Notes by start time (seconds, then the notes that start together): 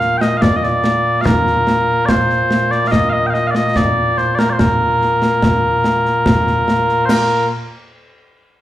Already playing: A#2 A#3 F5
0.01 snare
0.17 D#5 G5
0.21 snare
0.38 F5
0.42 D5, concert bass drum, snare
0.56 D#5
0.63 D5, snare
0.84 snare
1.21 F5
1.26 A#4, concert bass drum, snare
1.47 snare
1.67 snare
2.06 C5 D5, concert bass drum, snare
2.30 snare
2.51 snare
2.71 D5, snare
2.88 D#5 F5
2.92 concert bass drum, snare
3.10 D#5 F5
3.27 F5 G5
3.34 D#5, snare
3.47 D5 F5
3.55 D#5, snare
3.76 D5, concert bass drum, snare
4.18 C5, snare
4.35 A#4 D5, snare
4.50 C5 D5
4.59 A#4, concert bass drum, snare
5.01 snare
5.22 snare
5.42 concert bass drum, snare
5.84 snare
6.05 snare
6.26 concert bass drum, snare
6.47 snare
6.68 snare
6.89 snare
7.05 C5, snare, crash
7.10 A#4